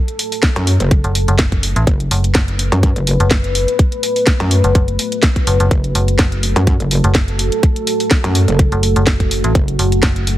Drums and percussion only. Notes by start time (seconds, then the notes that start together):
0.08 closed hi-hat
0.19 open hi-hat
0.32 open hi-hat
0.43 kick, snare, closed hi-hat
0.56 closed hi-hat
0.67 open hi-hat
0.80 closed hi-hat
0.91 kick, closed hi-hat
1.04 closed hi-hat
1.15 open hi-hat
1.28 closed hi-hat
1.39 kick, snare, closed hi-hat
1.52 kick, closed hi-hat
1.63 open hi-hat
1.76 closed hi-hat
1.87 kick, closed hi-hat
2.00 closed hi-hat
2.11 open hi-hat
2.24 closed hi-hat
2.35 kick, snare, closed hi-hat
2.48 closed hi-hat
2.59 open hi-hat
2.72 closed hi-hat
2.83 kick, closed hi-hat
2.96 closed hi-hat
3.07 open hi-hat
3.20 closed hi-hat
3.31 kick, snare, closed hi-hat
3.44 closed hi-hat
3.55 open hi-hat
3.68 closed hi-hat
3.79 kick, closed hi-hat
3.92 closed hi-hat
4.03 open hi-hat
4.16 open hi-hat
4.27 kick, snare, closed hi-hat
4.40 closed hi-hat
4.51 open hi-hat
4.64 closed hi-hat
4.75 kick, closed hi-hat
4.88 closed hi-hat
4.99 open hi-hat
5.12 closed hi-hat
5.23 kick, snare, closed hi-hat
5.36 kick, closed hi-hat
5.47 open hi-hat
5.60 closed hi-hat
5.71 kick, closed hi-hat
5.84 closed hi-hat
5.95 open hi-hat
6.08 closed hi-hat
6.19 kick, snare, closed hi-hat
6.32 closed hi-hat
6.43 open hi-hat
6.56 closed hi-hat
6.67 kick, closed hi-hat
6.80 closed hi-hat
6.91 open hi-hat
7.04 closed hi-hat
7.15 kick, snare, closed hi-hat
7.28 closed hi-hat
7.39 open hi-hat
7.52 closed hi-hat
7.63 kick, closed hi-hat
7.76 closed hi-hat
7.87 open hi-hat
8.00 open hi-hat
8.11 kick, snare, closed hi-hat
8.24 closed hi-hat
8.35 open hi-hat
8.48 closed hi-hat
8.59 kick, closed hi-hat
8.72 closed hi-hat
8.83 open hi-hat
8.96 closed hi-hat
9.07 kick, snare, closed hi-hat
9.20 kick, closed hi-hat
9.31 open hi-hat
9.44 closed hi-hat
9.55 kick, closed hi-hat
9.68 closed hi-hat
9.79 open hi-hat
9.92 closed hi-hat
10.03 kick, snare, closed hi-hat
10.16 closed hi-hat
10.27 open hi-hat